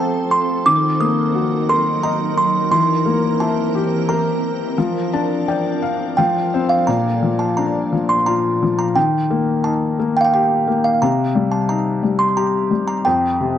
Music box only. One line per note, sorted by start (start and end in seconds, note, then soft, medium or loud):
0.00 0.33 A5 medium
0.31 0.67 C6 medium
0.66 1.01 D6 loud
1.01 1.71 D#6 medium
1.69 2.04 C6 medium
2.03 2.19 A#5 medium
2.38 2.53 C6 medium
2.72 3.41 C6 medium
3.40 4.10 A5 medium
4.09 6.14 A#5 medium
6.17 6.72 G5 medium
6.69 6.88 F5 medium
6.87 7.41 A#5 medium
7.39 7.58 A5 medium
7.57 8.11 A#5 medium
8.09 8.27 C6 medium
8.26 8.77 A#5 medium
8.79 8.86 A#5 medium
8.96 9.67 G5 medium
9.64 10.17 A5 medium
10.17 10.21 G5 medium
10.21 10.25 F5 medium
10.21 10.32 G5 medium
10.34 10.86 G5 medium
10.84 10.92 F5 medium
11.02 11.54 A#5 medium
11.52 11.59 A5 medium
11.69 12.21 A#5 medium
12.19 12.37 C6 medium
12.37 12.86 A#5 medium
12.88 13.06 A#5 medium
13.05 13.58 G5 medium